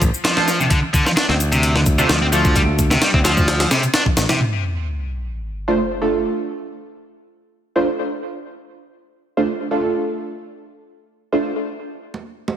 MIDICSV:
0, 0, Header, 1, 6, 480
1, 0, Start_track
1, 0, Key_signature, -1, "minor"
1, 0, Tempo, 461538
1, 739, Time_signature, 4, 2, 24, 8
1, 13071, End_track
2, 0, Start_track
2, 0, Title_t, "Synth stab"
2, 0, Program_c, 0, 62
2, 0, Note_on_c, 0, 57, 85
2, 0, Note_on_c, 0, 65, 76
2, 356, Note_off_c, 0, 57, 0
2, 357, Note_off_c, 0, 65, 0
2, 381, Note_on_c, 0, 57, 98
2, 382, Note_on_c, 0, 62, 90
2, 382, Note_on_c, 0, 65, 90
2, 382, Note_on_c, 0, 72, 108
2, 499, Note_off_c, 0, 57, 0
2, 499, Note_off_c, 0, 62, 0
2, 499, Note_off_c, 0, 65, 0
2, 500, Note_off_c, 0, 72, 0
2, 2062, Note_on_c, 0, 62, 88
2, 2063, Note_on_c, 0, 57, 94
2, 2063, Note_on_c, 0, 65, 90
2, 2064, Note_on_c, 0, 72, 105
2, 2180, Note_off_c, 0, 57, 0
2, 2180, Note_off_c, 0, 62, 0
2, 2180, Note_off_c, 0, 65, 0
2, 2181, Note_off_c, 0, 72, 0
2, 2418, Note_on_c, 0, 57, 85
2, 2418, Note_on_c, 0, 62, 76
2, 2419, Note_on_c, 0, 65, 76
2, 2419, Note_on_c, 0, 69, 91
2, 4076, Note_off_c, 0, 57, 0
2, 4076, Note_off_c, 0, 62, 0
2, 4077, Note_off_c, 0, 65, 0
2, 4077, Note_off_c, 0, 69, 0
2, 5904, Note_on_c, 0, 62, 84
2, 5905, Note_on_c, 0, 65, 84
2, 5905, Note_on_c, 0, 72, 99
2, 5906, Note_on_c, 0, 57, 91
2, 6021, Note_off_c, 0, 57, 0
2, 6021, Note_off_c, 0, 62, 0
2, 6021, Note_off_c, 0, 65, 0
2, 6021, Note_off_c, 0, 72, 0
2, 6256, Note_on_c, 0, 65, 75
2, 6257, Note_on_c, 0, 62, 72
2, 6257, Note_on_c, 0, 69, 89
2, 6258, Note_on_c, 0, 57, 81
2, 8035, Note_off_c, 0, 62, 0
2, 8035, Note_off_c, 0, 65, 0
2, 8035, Note_off_c, 0, 69, 0
2, 8036, Note_off_c, 0, 57, 0
2, 8066, Note_on_c, 0, 57, 96
2, 8067, Note_on_c, 0, 65, 85
2, 8067, Note_on_c, 0, 72, 103
2, 8068, Note_on_c, 0, 62, 89
2, 8182, Note_off_c, 0, 57, 0
2, 8182, Note_off_c, 0, 62, 0
2, 8182, Note_off_c, 0, 65, 0
2, 8182, Note_off_c, 0, 72, 0
2, 9746, Note_on_c, 0, 57, 91
2, 9746, Note_on_c, 0, 62, 85
2, 9746, Note_on_c, 0, 72, 105
2, 9747, Note_on_c, 0, 65, 84
2, 9861, Note_off_c, 0, 57, 0
2, 9861, Note_off_c, 0, 62, 0
2, 9862, Note_off_c, 0, 65, 0
2, 9862, Note_off_c, 0, 72, 0
2, 10098, Note_on_c, 0, 69, 89
2, 10099, Note_on_c, 0, 65, 73
2, 10100, Note_on_c, 0, 57, 81
2, 10100, Note_on_c, 0, 62, 74
2, 11756, Note_off_c, 0, 65, 0
2, 11756, Note_off_c, 0, 69, 0
2, 11757, Note_off_c, 0, 57, 0
2, 11757, Note_off_c, 0, 62, 0
2, 11777, Note_on_c, 0, 57, 86
2, 11777, Note_on_c, 0, 65, 78
2, 11777, Note_on_c, 0, 72, 95
2, 11779, Note_on_c, 0, 62, 77
2, 11978, Note_off_c, 0, 57, 0
2, 11978, Note_off_c, 0, 65, 0
2, 11978, Note_off_c, 0, 72, 0
2, 11979, Note_off_c, 0, 62, 0
2, 13071, End_track
3, 0, Start_track
3, 0, Title_t, "Distorted electric guitar"
3, 0, Program_c, 1, 30
3, 255, Note_on_c, 1, 53, 85
3, 612, Note_off_c, 1, 53, 0
3, 623, Note_on_c, 1, 48, 76
3, 668, Note_off_c, 1, 48, 0
3, 732, Note_on_c, 1, 50, 85
3, 817, Note_off_c, 1, 50, 0
3, 973, Note_on_c, 1, 50, 100
3, 1098, Note_off_c, 1, 50, 0
3, 1104, Note_on_c, 1, 53, 78
3, 1148, Note_off_c, 1, 53, 0
3, 1213, Note_on_c, 1, 62, 82
3, 1298, Note_off_c, 1, 62, 0
3, 1343, Note_on_c, 1, 60, 79
3, 1388, Note_off_c, 1, 60, 0
3, 1581, Note_on_c, 1, 48, 77
3, 1811, Note_off_c, 1, 48, 0
3, 1824, Note_on_c, 1, 50, 79
3, 1868, Note_off_c, 1, 50, 0
3, 2066, Note_on_c, 1, 48, 103
3, 2167, Note_off_c, 1, 48, 0
3, 2181, Note_on_c, 1, 53, 85
3, 2261, Note_off_c, 1, 53, 0
3, 2310, Note_on_c, 1, 60, 76
3, 2351, Note_off_c, 1, 60, 0
3, 2420, Note_on_c, 1, 53, 73
3, 2648, Note_off_c, 1, 53, 0
3, 2661, Note_on_c, 1, 55, 84
3, 2709, Note_off_c, 1, 55, 0
3, 3024, Note_on_c, 1, 48, 104
3, 3126, Note_off_c, 1, 48, 0
3, 3140, Note_on_c, 1, 55, 86
3, 3221, Note_off_c, 1, 55, 0
3, 3268, Note_on_c, 1, 60, 78
3, 3310, Note_off_c, 1, 60, 0
3, 3377, Note_on_c, 1, 53, 77
3, 3847, Note_off_c, 1, 53, 0
3, 3858, Note_on_c, 1, 48, 80
3, 3974, Note_off_c, 1, 48, 0
3, 4101, Note_on_c, 1, 62, 84
3, 4182, Note_off_c, 1, 62, 0
3, 4468, Note_on_c, 1, 48, 80
3, 4568, Note_off_c, 1, 48, 0
3, 13071, End_track
4, 0, Start_track
4, 0, Title_t, "Picked electric bass"
4, 0, Program_c, 2, 34
4, 16, Note_on_c, 2, 33, 83
4, 102, Note_off_c, 2, 33, 0
4, 1343, Note_on_c, 2, 38, 100
4, 2116, Note_off_c, 2, 38, 0
4, 2178, Note_on_c, 2, 38, 96
4, 3078, Note_off_c, 2, 38, 0
4, 3264, Note_on_c, 2, 38, 102
4, 3797, Note_off_c, 2, 38, 0
4, 4337, Note_on_c, 2, 33, 80
4, 4423, Note_off_c, 2, 33, 0
4, 13071, End_track
5, 0, Start_track
5, 0, Title_t, "Sub drop"
5, 0, Program_c, 3, 103
5, 4578, Note_on_c, 3, 60, 70
5, 6499, Note_off_c, 3, 60, 0
5, 13071, End_track
6, 0, Start_track
6, 0, Title_t, "Drums"
6, 17, Note_on_c, 9, 36, 97
6, 17, Note_on_c, 9, 42, 70
6, 18, Note_on_c, 9, 82, 70
6, 121, Note_off_c, 9, 36, 0
6, 121, Note_off_c, 9, 42, 0
6, 122, Note_off_c, 9, 82, 0
6, 147, Note_on_c, 9, 82, 40
6, 251, Note_off_c, 9, 82, 0
6, 257, Note_on_c, 9, 38, 116
6, 257, Note_on_c, 9, 42, 90
6, 259, Note_on_c, 9, 82, 31
6, 361, Note_off_c, 9, 38, 0
6, 361, Note_off_c, 9, 42, 0
6, 363, Note_off_c, 9, 82, 0
6, 384, Note_on_c, 9, 38, 52
6, 386, Note_on_c, 9, 64, 73
6, 488, Note_off_c, 9, 38, 0
6, 490, Note_off_c, 9, 64, 0
6, 496, Note_on_c, 9, 38, 42
6, 496, Note_on_c, 9, 42, 69
6, 500, Note_on_c, 9, 82, 69
6, 600, Note_off_c, 9, 38, 0
6, 600, Note_off_c, 9, 42, 0
6, 604, Note_off_c, 9, 82, 0
6, 626, Note_on_c, 9, 64, 71
6, 629, Note_on_c, 9, 82, 40
6, 730, Note_off_c, 9, 64, 0
6, 733, Note_off_c, 9, 82, 0
6, 734, Note_on_c, 9, 42, 89
6, 736, Note_on_c, 9, 36, 109
6, 741, Note_on_c, 9, 82, 31
6, 838, Note_off_c, 9, 42, 0
6, 840, Note_off_c, 9, 36, 0
6, 845, Note_off_c, 9, 82, 0
6, 975, Note_on_c, 9, 42, 70
6, 977, Note_on_c, 9, 36, 95
6, 981, Note_on_c, 9, 82, 73
6, 1079, Note_off_c, 9, 42, 0
6, 1081, Note_off_c, 9, 36, 0
6, 1085, Note_off_c, 9, 82, 0
6, 1107, Note_on_c, 9, 38, 49
6, 1108, Note_on_c, 9, 82, 43
6, 1211, Note_off_c, 9, 38, 0
6, 1212, Note_off_c, 9, 82, 0
6, 1216, Note_on_c, 9, 38, 118
6, 1216, Note_on_c, 9, 42, 87
6, 1220, Note_on_c, 9, 82, 31
6, 1320, Note_off_c, 9, 38, 0
6, 1320, Note_off_c, 9, 42, 0
6, 1324, Note_off_c, 9, 82, 0
6, 1348, Note_on_c, 9, 38, 47
6, 1452, Note_off_c, 9, 38, 0
6, 1458, Note_on_c, 9, 42, 71
6, 1459, Note_on_c, 9, 82, 73
6, 1562, Note_off_c, 9, 42, 0
6, 1563, Note_off_c, 9, 82, 0
6, 1585, Note_on_c, 9, 42, 46
6, 1585, Note_on_c, 9, 82, 42
6, 1689, Note_off_c, 9, 42, 0
6, 1689, Note_off_c, 9, 82, 0
6, 1695, Note_on_c, 9, 82, 31
6, 1696, Note_on_c, 9, 42, 88
6, 1799, Note_off_c, 9, 82, 0
6, 1800, Note_off_c, 9, 42, 0
6, 1827, Note_on_c, 9, 38, 44
6, 1931, Note_off_c, 9, 38, 0
6, 1935, Note_on_c, 9, 82, 69
6, 1938, Note_on_c, 9, 36, 97
6, 1939, Note_on_c, 9, 42, 69
6, 2039, Note_off_c, 9, 82, 0
6, 2042, Note_off_c, 9, 36, 0
6, 2043, Note_off_c, 9, 42, 0
6, 2064, Note_on_c, 9, 82, 41
6, 2168, Note_off_c, 9, 82, 0
6, 2178, Note_on_c, 9, 38, 120
6, 2178, Note_on_c, 9, 42, 89
6, 2178, Note_on_c, 9, 82, 32
6, 2282, Note_off_c, 9, 38, 0
6, 2282, Note_off_c, 9, 42, 0
6, 2282, Note_off_c, 9, 82, 0
6, 2418, Note_on_c, 9, 82, 72
6, 2422, Note_on_c, 9, 42, 70
6, 2522, Note_off_c, 9, 82, 0
6, 2526, Note_off_c, 9, 42, 0
6, 2546, Note_on_c, 9, 82, 41
6, 2547, Note_on_c, 9, 36, 98
6, 2650, Note_off_c, 9, 82, 0
6, 2651, Note_off_c, 9, 36, 0
6, 2658, Note_on_c, 9, 82, 33
6, 2659, Note_on_c, 9, 36, 108
6, 2662, Note_on_c, 9, 42, 85
6, 2762, Note_off_c, 9, 82, 0
6, 2763, Note_off_c, 9, 36, 0
6, 2766, Note_off_c, 9, 42, 0
6, 2776, Note_on_c, 9, 63, 54
6, 2880, Note_off_c, 9, 63, 0
6, 2899, Note_on_c, 9, 36, 96
6, 2899, Note_on_c, 9, 42, 69
6, 2899, Note_on_c, 9, 82, 74
6, 3003, Note_off_c, 9, 36, 0
6, 3003, Note_off_c, 9, 42, 0
6, 3003, Note_off_c, 9, 82, 0
6, 3028, Note_on_c, 9, 38, 57
6, 3029, Note_on_c, 9, 82, 43
6, 3132, Note_off_c, 9, 38, 0
6, 3133, Note_off_c, 9, 82, 0
6, 3137, Note_on_c, 9, 38, 116
6, 3137, Note_on_c, 9, 42, 87
6, 3139, Note_on_c, 9, 82, 32
6, 3241, Note_off_c, 9, 38, 0
6, 3241, Note_off_c, 9, 42, 0
6, 3243, Note_off_c, 9, 82, 0
6, 3266, Note_on_c, 9, 36, 97
6, 3370, Note_off_c, 9, 36, 0
6, 3379, Note_on_c, 9, 38, 109
6, 3379, Note_on_c, 9, 42, 78
6, 3379, Note_on_c, 9, 82, 75
6, 3483, Note_off_c, 9, 38, 0
6, 3483, Note_off_c, 9, 42, 0
6, 3483, Note_off_c, 9, 82, 0
6, 3507, Note_on_c, 9, 36, 88
6, 3508, Note_on_c, 9, 82, 43
6, 3611, Note_off_c, 9, 36, 0
6, 3612, Note_off_c, 9, 82, 0
6, 3618, Note_on_c, 9, 38, 106
6, 3618, Note_on_c, 9, 42, 77
6, 3620, Note_on_c, 9, 82, 33
6, 3722, Note_off_c, 9, 38, 0
6, 3722, Note_off_c, 9, 42, 0
6, 3724, Note_off_c, 9, 82, 0
6, 3745, Note_on_c, 9, 38, 106
6, 3745, Note_on_c, 9, 42, 80
6, 3849, Note_off_c, 9, 38, 0
6, 3849, Note_off_c, 9, 42, 0
6, 3859, Note_on_c, 9, 82, 75
6, 3860, Note_on_c, 9, 38, 106
6, 3860, Note_on_c, 9, 42, 79
6, 3963, Note_off_c, 9, 82, 0
6, 3964, Note_off_c, 9, 38, 0
6, 3964, Note_off_c, 9, 42, 0
6, 3985, Note_on_c, 9, 42, 63
6, 3988, Note_on_c, 9, 82, 42
6, 4089, Note_off_c, 9, 42, 0
6, 4092, Note_off_c, 9, 82, 0
6, 4094, Note_on_c, 9, 38, 107
6, 4094, Note_on_c, 9, 42, 83
6, 4098, Note_on_c, 9, 82, 33
6, 4198, Note_off_c, 9, 38, 0
6, 4198, Note_off_c, 9, 42, 0
6, 4202, Note_off_c, 9, 82, 0
6, 4218, Note_on_c, 9, 64, 85
6, 4226, Note_on_c, 9, 36, 87
6, 4322, Note_off_c, 9, 64, 0
6, 4330, Note_off_c, 9, 36, 0
6, 4335, Note_on_c, 9, 38, 107
6, 4335, Note_on_c, 9, 42, 81
6, 4339, Note_on_c, 9, 82, 73
6, 4439, Note_off_c, 9, 38, 0
6, 4439, Note_off_c, 9, 42, 0
6, 4443, Note_off_c, 9, 82, 0
6, 4459, Note_on_c, 9, 64, 78
6, 4461, Note_on_c, 9, 63, 74
6, 4464, Note_on_c, 9, 38, 108
6, 4464, Note_on_c, 9, 42, 81
6, 4468, Note_on_c, 9, 82, 43
6, 4563, Note_off_c, 9, 64, 0
6, 4565, Note_off_c, 9, 63, 0
6, 4568, Note_off_c, 9, 38, 0
6, 4568, Note_off_c, 9, 42, 0
6, 4572, Note_off_c, 9, 82, 0
6, 12626, Note_on_c, 9, 62, 49
6, 12730, Note_off_c, 9, 62, 0
6, 12978, Note_on_c, 9, 62, 75
6, 13071, Note_off_c, 9, 62, 0
6, 13071, End_track
0, 0, End_of_file